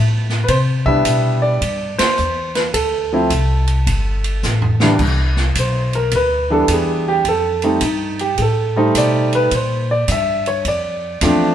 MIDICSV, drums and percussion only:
0, 0, Header, 1, 2, 480
1, 0, Start_track
1, 0, Key_signature, 0, "major"
1, 0, Tempo, 564440
1, 414, Time_signature, 4, 2, 24, 8
1, 9820, End_track
2, 0, Start_track
2, 0, Title_t, "Drums"
2, 249, Note_on_c, 9, 38, 39
2, 334, Note_off_c, 9, 38, 0
2, 410, Note_on_c, 9, 51, 63
2, 413, Note_on_c, 9, 36, 22
2, 495, Note_off_c, 9, 51, 0
2, 498, Note_off_c, 9, 36, 0
2, 732, Note_on_c, 9, 36, 46
2, 817, Note_off_c, 9, 36, 0
2, 892, Note_on_c, 9, 44, 49
2, 892, Note_on_c, 9, 51, 60
2, 893, Note_on_c, 9, 36, 19
2, 977, Note_off_c, 9, 44, 0
2, 977, Note_off_c, 9, 51, 0
2, 978, Note_off_c, 9, 36, 0
2, 1372, Note_on_c, 9, 36, 19
2, 1375, Note_on_c, 9, 51, 57
2, 1457, Note_off_c, 9, 36, 0
2, 1460, Note_off_c, 9, 51, 0
2, 1692, Note_on_c, 9, 51, 69
2, 1693, Note_on_c, 9, 38, 80
2, 1777, Note_off_c, 9, 51, 0
2, 1778, Note_off_c, 9, 38, 0
2, 1848, Note_on_c, 9, 44, 48
2, 1933, Note_off_c, 9, 44, 0
2, 2170, Note_on_c, 9, 51, 43
2, 2171, Note_on_c, 9, 38, 51
2, 2255, Note_off_c, 9, 51, 0
2, 2256, Note_off_c, 9, 38, 0
2, 2329, Note_on_c, 9, 36, 18
2, 2330, Note_on_c, 9, 51, 66
2, 2414, Note_off_c, 9, 36, 0
2, 2415, Note_off_c, 9, 51, 0
2, 2808, Note_on_c, 9, 44, 49
2, 2808, Note_on_c, 9, 51, 56
2, 2809, Note_on_c, 9, 36, 22
2, 2893, Note_off_c, 9, 44, 0
2, 2893, Note_off_c, 9, 51, 0
2, 2894, Note_off_c, 9, 36, 0
2, 3125, Note_on_c, 9, 51, 41
2, 3210, Note_off_c, 9, 51, 0
2, 3289, Note_on_c, 9, 36, 21
2, 3291, Note_on_c, 9, 51, 59
2, 3374, Note_off_c, 9, 36, 0
2, 3376, Note_off_c, 9, 51, 0
2, 3607, Note_on_c, 9, 51, 46
2, 3692, Note_off_c, 9, 51, 0
2, 3767, Note_on_c, 9, 44, 61
2, 3768, Note_on_c, 9, 38, 46
2, 3852, Note_off_c, 9, 44, 0
2, 3853, Note_off_c, 9, 38, 0
2, 3927, Note_on_c, 9, 43, 53
2, 4012, Note_off_c, 9, 43, 0
2, 4082, Note_on_c, 9, 38, 75
2, 4167, Note_off_c, 9, 38, 0
2, 4243, Note_on_c, 9, 49, 65
2, 4245, Note_on_c, 9, 36, 68
2, 4328, Note_off_c, 9, 49, 0
2, 4330, Note_off_c, 9, 36, 0
2, 4562, Note_on_c, 9, 38, 49
2, 4647, Note_off_c, 9, 38, 0
2, 4722, Note_on_c, 9, 44, 58
2, 4722, Note_on_c, 9, 51, 60
2, 4725, Note_on_c, 9, 36, 23
2, 4807, Note_off_c, 9, 44, 0
2, 4807, Note_off_c, 9, 51, 0
2, 4810, Note_off_c, 9, 36, 0
2, 5044, Note_on_c, 9, 51, 38
2, 5129, Note_off_c, 9, 51, 0
2, 5199, Note_on_c, 9, 51, 55
2, 5204, Note_on_c, 9, 36, 20
2, 5284, Note_off_c, 9, 51, 0
2, 5289, Note_off_c, 9, 36, 0
2, 5681, Note_on_c, 9, 44, 60
2, 5681, Note_on_c, 9, 51, 70
2, 5685, Note_on_c, 9, 36, 23
2, 5766, Note_off_c, 9, 44, 0
2, 5766, Note_off_c, 9, 51, 0
2, 5770, Note_off_c, 9, 36, 0
2, 6163, Note_on_c, 9, 51, 55
2, 6165, Note_on_c, 9, 36, 21
2, 6248, Note_off_c, 9, 51, 0
2, 6250, Note_off_c, 9, 36, 0
2, 6479, Note_on_c, 9, 51, 38
2, 6564, Note_off_c, 9, 51, 0
2, 6638, Note_on_c, 9, 44, 55
2, 6638, Note_on_c, 9, 51, 64
2, 6645, Note_on_c, 9, 36, 21
2, 6723, Note_off_c, 9, 44, 0
2, 6723, Note_off_c, 9, 51, 0
2, 6730, Note_off_c, 9, 36, 0
2, 6967, Note_on_c, 9, 51, 38
2, 7052, Note_off_c, 9, 51, 0
2, 7123, Note_on_c, 9, 51, 51
2, 7127, Note_on_c, 9, 36, 21
2, 7208, Note_off_c, 9, 51, 0
2, 7212, Note_off_c, 9, 36, 0
2, 7609, Note_on_c, 9, 36, 18
2, 7609, Note_on_c, 9, 44, 64
2, 7609, Note_on_c, 9, 51, 63
2, 7694, Note_off_c, 9, 36, 0
2, 7694, Note_off_c, 9, 44, 0
2, 7694, Note_off_c, 9, 51, 0
2, 7931, Note_on_c, 9, 51, 45
2, 8016, Note_off_c, 9, 51, 0
2, 8089, Note_on_c, 9, 51, 57
2, 8091, Note_on_c, 9, 36, 21
2, 8174, Note_off_c, 9, 51, 0
2, 8176, Note_off_c, 9, 36, 0
2, 8571, Note_on_c, 9, 44, 53
2, 8571, Note_on_c, 9, 51, 63
2, 8573, Note_on_c, 9, 36, 21
2, 8656, Note_off_c, 9, 44, 0
2, 8656, Note_off_c, 9, 51, 0
2, 8658, Note_off_c, 9, 36, 0
2, 8895, Note_on_c, 9, 51, 38
2, 8980, Note_off_c, 9, 51, 0
2, 9055, Note_on_c, 9, 36, 17
2, 9055, Note_on_c, 9, 51, 57
2, 9140, Note_off_c, 9, 36, 0
2, 9140, Note_off_c, 9, 51, 0
2, 9533, Note_on_c, 9, 44, 50
2, 9533, Note_on_c, 9, 51, 66
2, 9534, Note_on_c, 9, 38, 37
2, 9536, Note_on_c, 9, 36, 25
2, 9618, Note_off_c, 9, 44, 0
2, 9618, Note_off_c, 9, 51, 0
2, 9619, Note_off_c, 9, 38, 0
2, 9621, Note_off_c, 9, 36, 0
2, 9820, End_track
0, 0, End_of_file